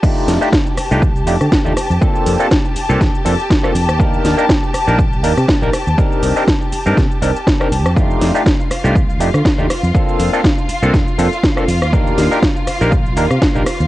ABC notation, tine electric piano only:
X:1
M:4/4
L:1/16
Q:"Swing 16ths" 1/4=121
K:Fmix
V:1 name="Tine electric piano"
[A,DEFG]3 [A,DEFG] z3 [A,DEFG] z2 [A,DEFG] z2 [A,DEFG] z2 | [B,CDFA]3 [B,CDFA] z3 [B,CDFA] z2 [B,CDFA] z2 [B,CDFA] z2 | [B,DEGB]3 [B,DEGB] z3 [B,DEGB] z2 [B,DEGB] z2 [B,DEGB] z2 | [CDEGB]3 [CDEGB] z3 [CDEGB] z2 [CDEGB] z2 [CDEGB] z2 |
[A,DEFG]3 [A,DEFG] z3 [A,DEFG] z2 [A,DEFG] z2 [A,DEFG] z2 | [B,CDFA]3 [B,CDFA] z3 [B,CDFA] z2 [B,CDFA] z2 [B,CDFA] z2 | [B,DEGB]3 [B,DEGB] z3 [B,DEGB] z2 [B,DEGB] z2 [B,DEGB] z2 |]